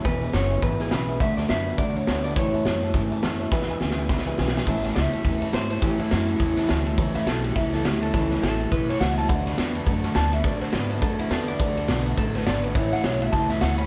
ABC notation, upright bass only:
X:1
M:4/4
L:1/8
Q:"Swing" 1/4=208
K:A
V:1 name="Upright bass" clef=bass
E,,,2 F,,,2 G,,,2 B,,,2 | D,,2 F,,2 E,,2 D,,2 | A,,2 F,,2 G,,2 F,,2 | E,,2 D,,2 C,,2 B,,,2 |
A,,,2 C,, z E,,2 G,,2 | A,,2 F,,2 E,,2 D,,2 | C,, z B,,,2 C,,2 D,,2 | C,,2 A,,,2 B,,,2 C,,2 |
D,,2 E,,2 F,,2 D,,2 | A,,2 G,,2 F,,2 E,,2 | D,,2 B,,,2 A,,,2 G,,,2 | A,,,2 B,,,2 C,,2 D,,2 |]